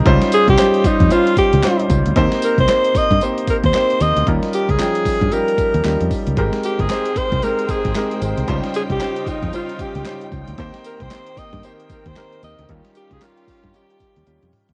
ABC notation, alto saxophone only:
X:1
M:4/4
L:1/16
Q:"Swing 16ths" 1/4=114
K:Cphr
V:1 name="Alto saxophone"
z2 A G3 E2 F2 G4 z2 | z2 B c3 e2 z2 B c3 e2 | z2 G A4- A B6 z2 | z2 G A3 c2 B2 A4 z2 |
z2 A G3 E2 F2 G4 z2 | z2 B c3 e2 z2 B c3 e2 | z2 G A F4 G6 z2 |]